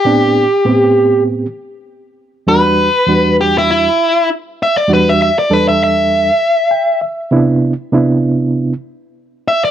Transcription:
X:1
M:4/4
L:1/16
Q:"Swing 16ths" 1/4=99
K:Em
V:1 name="Overdriven electric guitar"
G8 z8 | B6 G E E4 z2 e d | B e e d B e e8 z2 | z12 z2 e d |]
V:2 name="Reed electric piano"
[A,,B,CD]2 z2 [A,,B,CG]6 z6 | [E,,G,DF]2 z2 [E,,G,DF]6 z6 | [E,,G,DF]2 z2 [E,,G,DA]6 z2 g2 e2 | [C,B,DE]2 z2 [C,B,DE]6 z6 |]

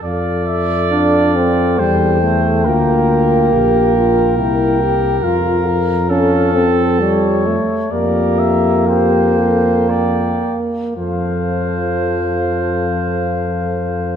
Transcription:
X:1
M:3/4
L:1/8
Q:1/4=67
K:F
V:1 name="Trumpet"
f e f2 g2- | g4 g2 | f2 f z _d2 | d e g2 g z |
f6 |]
V:2 name="Trumpet"
d4 c2 | B6- | B2 A3 z | B2 c2 d z |
c6 |]
V:3 name="French horn"
A6 | F2 G F E G | F B A3 z | G2 G A B z |
A6 |]
V:4 name="Trombone"
z2 D C G, A, | B,6 | z2 _D C G, A, | B,6 |
F,6 |]
V:5 name="Bass trombone" clef=bass
F,,4 E,,2 | D,,2 B,,,2 C,,2 | F,,4- F,, z | F,,4- F,, z |
F,,6 |]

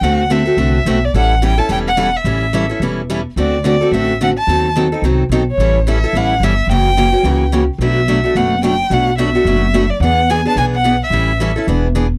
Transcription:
X:1
M:4/4
L:1/8
Q:"Swing" 1/4=217
K:Amix
V:1 name="Violin"
f2 e4- e d | f2 g a g f2 e- | e3 z4 z | d2 d2 e2 f a- |
a2 z4 z c- | c2 e2 f2 e2 | g6 z2 | e4 f2 g2 |
f2 e4- e d | f2 ^g a g f2 e- | e3 z4 z |]
V:2 name="Steel-string acoustic guitar"
[D,A,=CFA] z [D,A,CFA] [CFA] [D,A,CFA] z [D,A,CFA] z | [E,G,CEA] z [E,G,CEA] [CEA] [E,G,CEA] z [E,G,CEA] z | [E,G,CEA] z [E,G,CEA] [CEA] [E,G,CEA] z [E,G,CEA] z | [D,A,=CFA] z [D,A,CFA] [CFA] [D,A,CFA] z [D,A,CFA] z |
[^D,F,^B,^DA] z [D,F,B,DA] [B,DA] [D,F,B,DA] z [D,F,B,DA] z | [E,G,CEA] z [E,G,CEA] [CEA] [E,G,CEA] z [E,G,CEA] z | [C,E,^A,CF] z [C,E,A,CF] [A,CF] [C,E,A,CF] z [C,E,A,CF] z | [B,,F,A,DF] z [B,,F,A,DF] [A,DF] [B,,F,A,DF] z [B,,F,A,DF] z |
[B,,F,A,DF] z [B,,F,A,DF] [A,DF] [B,,F,A,DF] z [B,,F,A,DF] z | [E,B,D^G] z [E,B,DG] [B,DG] [E,B,DG] z [E,B,DG] z | [E,G,CEA] z [E,G,CEA] [CEA] [E,B,D^G] z [E,B,DG] z |]
V:3 name="Upright bass" clef=bass
D,,4 =C,,2 B,,,2 | A,,,4 E,,,4 | A,,,4 E,,,4 | D,,4 A,,,4 |
^D,,4 ^B,,,2 =B,,,2 | A,,,4 A,,,2 G,,,2 | F,,,4 C,,4 | B,,,4 F,,,4 |
B,,,4 F,,,4 | E,,4 B,,,4 | A,,,4 E,,,4 |]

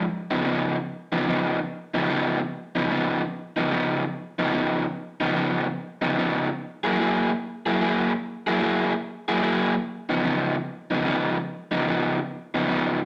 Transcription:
X:1
M:4/4
L:1/8
Q:"Swing" 1/4=147
K:Dbmix
V:1 name="Overdriven electric guitar"
z [D,F,CE] [D,F,CE] z2 [D,F,CE] [D,F,CE] z | z [D,F,CE] [D,F,CE] z2 [D,F,CE] [D,F,CE] z | z [D,F,CE] [D,F,CE] z2 [D,F,CE] [D,F,CE] z | z [D,F,CE] [D,F,CE] z2 [D,F,CE] [D,F,CE] z |
z [G,B,_FA] [G,B,FA] z2 [G,B,FA] [G,B,FA] z | z [G,B,_FA] [G,B,FA] z2 [G,B,FA] [G,B,FA] z | z [D,F,CE] [D,F,CE] z2 [D,F,CE] [D,F,CE] z | z [D,F,CE] [D,F,CE] z2 [D,F,CE] [D,F,CE] z |]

